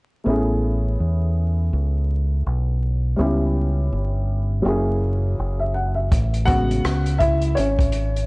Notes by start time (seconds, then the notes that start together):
0.24 A1 A3 B3 C#4
0.28 E4 G#4
1.00 E2
1.73 C#2
2.46 B1
3.16 C#2 G3 B3 C#4 E4
3.22 G4
3.92 G1
4.62 F#1 F#3 A#3 C#4
4.66 E4 G#4
5.39 F#1
5.59 E5
5.74 F#5
5.95 E5
6.12 A1, kick, closed hi-hat
6.34 closed hi-hat
6.45 C#3 G#3 B3 F#4 F#5, kick, closed hi-hat
6.71 closed hi-hat
6.85 C#2, cross-stick, closed hi-hat
7.06 closed hi-hat
7.18 E4 E5, kick, closed hi-hat
7.42 closed hi-hat
7.55 G#1 C#4 C#5, closed hi-hat
7.79 kick, closed hi-hat
7.92 closed hi-hat
8.17 closed hi-hat